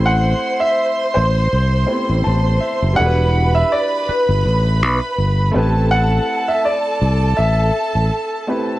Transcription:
Already playing: A1 A3 C4 E4 G4 C5 C6
0.06 F#5
0.60 E5
1.14 A1 C5
1.53 C2
1.86 A3 B3 E4 G4 C5
1.93 C4
2.09 A1
2.24 A1 A5
2.60 E5
2.82 F#1
2.94 G3 D4 E4 F#4 B4 F#5 B5
2.99 E1 A4
3.06 B4
3.55 E5
3.72 D5
4.09 B4, muted fingered electric bass stroke
4.29 G1
4.45 A1
4.82 B1
5.18 G1
5.52 A1 A3 C4 E4 G4 A4
5.56 B4 A5
5.91 F#5
6.48 E5
6.65 D5
7.02 C2
7.37 A1 E5
7.95 A1
8.47 A3 C4 E4 G4 B4

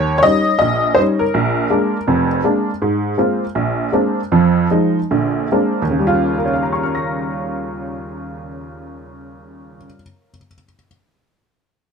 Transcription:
Already playing: D#2 C#5
0.18 C#5
0.23 G3 C#4 D#4 D#5
0.59 A#1 D#5
0.95 G3 C#4 D#4 C5
1.19 A#4
1.34 A#1
1.70 G#3 A#3 D4
2.07 F1 F2
2.44 G#3 A#3 D4
2.82 G#2
3.18 G#3 A#3 C4 F4
3.55 A#1
3.93 G#3 A#3 C4 D4
4.32 F2 F3
4.71 F3 G#3 D#4
5.11 A#1 D3
5.52 G#3 A#3 C4 D4
5.82 D#2
5.90 C#3
5.99 G3
6.07 F4
6.38 A#4
6.45 C#5
6.53 F5
6.63 A#5
6.73 C#6
6.83 F6
6.95 A#6

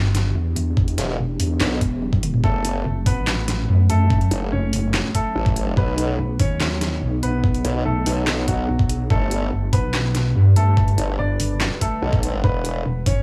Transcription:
Already playing: G1 E3 B3 D4 G4
0.15 snare, closed hi-hat
0.35 E2
0.56 E2, closed hi-hat
0.77 kick
0.88 closed hi-hat
0.98 E1, snare, closed hi-hat
1.19 E1
1.40 E2, open hi-hat
1.60 B1, snare, clap
1.81 E1, kick, closed hi-hat
2.02 high tom
2.13 kick, high tom
2.23 closed hi-hat, mid tom
2.34 mid tom
2.44 F#1 F#3 A3 C#4 A4, kick
2.65 closed hi-hat
2.85 F#1
3.06 A1 B3 B4, kick, open hi-hat
3.27 snare, clap
3.48 snare, closed hi-hat
3.69 F#2
3.90 F#2 A3 A4, closed hi-hat
4.10 kick
4.21 closed hi-hat
4.31 F#1, closed hi-hat
4.52 F#1 C#4 C#5
4.73 F#1, open hi-hat
4.94 snare, clap
5.15 A3 A4, kick, closed hi-hat
5.35 A1
5.46 kick
5.56 closed hi-hat
5.77 B1 F#3 B3 D#4 B4, kick
5.98 closed hi-hat
6.19 B1
6.40 D#2 C#4 C#5, kick, open hi-hat
6.60 snare, clap
6.81 snare, closed hi-hat
7.02 B1
7.23 B1 B3 B4, closed hi-hat
7.44 kick
7.54 closed hi-hat
7.65 B1, closed hi-hat
7.85 B1 A3 A4
8.06 B1, open hi-hat
8.27 snare, clap
8.48 F#3 F#4, kick, closed hi-hat
8.69 B1
8.79 kick
8.89 closed hi-hat
9.10 G1 D3 G3 A3 A4 B4, kick
9.31 closed hi-hat
9.52 G1
9.73 B1 B3 B4, kick, open hi-hat
9.94 snare, clap
10.15 snare, closed hi-hat
10.35 G2
10.56 G2 A3 A4, closed hi-hat
10.77 kick
10.88 closed hi-hat
10.98 G1, closed hi-hat
11.19 G1 D4 D5
11.40 G1, open hi-hat
11.61 snare, clap
11.81 A3 A4, kick, closed hi-hat
12.02 B1
12.13 kick
12.23 closed hi-hat
12.44 E1 E3 B3 G4 B4, kick
12.65 closed hi-hat
12.85 E1
13.06 G1 C#4 C#5, kick, open hi-hat

